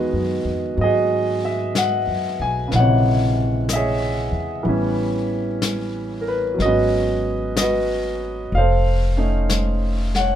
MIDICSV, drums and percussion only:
0, 0, Header, 1, 2, 480
1, 0, Start_track
1, 0, Tempo, 969305
1, 1344, Time_signature, 4, 2, 24, 8
1, 5127, End_track
2, 0, Start_track
2, 0, Title_t, "Drums"
2, 384, Note_on_c, 9, 25, 29
2, 867, Note_off_c, 9, 25, 0
2, 867, Note_on_c, 9, 25, 26
2, 867, Note_on_c, 9, 38, 33
2, 867, Note_on_c, 9, 44, 40
2, 917, Note_off_c, 9, 38, 0
2, 917, Note_off_c, 9, 44, 0
2, 1345, Note_off_c, 9, 25, 0
2, 1345, Note_on_c, 9, 25, 31
2, 1345, Note_on_c, 9, 38, 23
2, 1395, Note_off_c, 9, 38, 0
2, 1826, Note_off_c, 9, 25, 0
2, 1826, Note_on_c, 9, 25, 28
2, 1826, Note_on_c, 9, 38, 32
2, 1826, Note_on_c, 9, 44, 45
2, 1876, Note_off_c, 9, 38, 0
2, 1876, Note_off_c, 9, 44, 0
2, 2305, Note_off_c, 9, 25, 0
2, 2305, Note_on_c, 9, 25, 26
2, 2782, Note_off_c, 9, 25, 0
2, 2782, Note_on_c, 9, 25, 26
2, 2782, Note_on_c, 9, 38, 35
2, 2782, Note_on_c, 9, 44, 42
2, 2832, Note_off_c, 9, 38, 0
2, 2832, Note_off_c, 9, 44, 0
2, 3267, Note_off_c, 9, 25, 0
2, 3267, Note_on_c, 9, 25, 28
2, 3267, Note_on_c, 9, 38, 22
2, 3317, Note_off_c, 9, 38, 0
2, 3746, Note_off_c, 9, 25, 0
2, 3746, Note_on_c, 9, 25, 31
2, 3746, Note_on_c, 9, 38, 33
2, 3746, Note_on_c, 9, 44, 41
2, 3796, Note_off_c, 9, 38, 0
2, 3796, Note_off_c, 9, 44, 0
2, 4225, Note_off_c, 9, 25, 0
2, 4225, Note_on_c, 9, 25, 28
2, 4702, Note_off_c, 9, 25, 0
2, 4702, Note_on_c, 9, 25, 31
2, 4702, Note_on_c, 9, 38, 34
2, 4702, Note_on_c, 9, 44, 40
2, 4752, Note_off_c, 9, 38, 0
2, 4752, Note_off_c, 9, 44, 0
2, 5025, Note_on_c, 9, 38, 22
2, 5075, Note_off_c, 9, 38, 0
2, 5127, Note_off_c, 9, 25, 0
2, 5127, End_track
0, 0, End_of_file